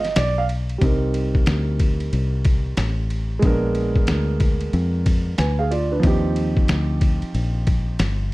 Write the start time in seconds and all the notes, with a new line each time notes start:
Already playing: G1 D#5
0.04 snare, ride
0.16 B1 D5, snare, hi-hat pedal, ride
0.38 F5
0.49 ride
0.69 ride
0.78 C2 G3 C4, kick, ride
0.83 D#4 A#4
1.14 ride
1.35 kick
1.46 D2, snare, hi-hat pedal, ride
1.79 kick, ride
2.00 ride
2.13 C2, ride
2.45 kick, ride
2.77 A1, snare, hi-hat pedal, ride
3.10 ride
3.39 A#1 G#3 B3, kick, ride
3.44 D4 A#4
3.75 ride
3.96 kick
4.07 D2, snare, hi-hat pedal, ride
4.40 kick, ride
4.61 ride
4.73 F2, ride
5.06 kick, ride
5.38 D2 B4 G#5, snare, hi-hat pedal, ride
5.59 G#4 F5
5.71 F4 D5, ride
5.92 D4 B4
6.00 F3 C4, kick, ride
6.04 D#2 D#4 G4
6.36 ride
6.57 kick
6.68 D2, snare, hi-hat pedal, ride
7.01 kick, ride
7.22 muted fingered electric bass stroke, ride
7.34 A#1, ride
7.67 kick, ride
7.99 G1, snare, hi-hat pedal, ride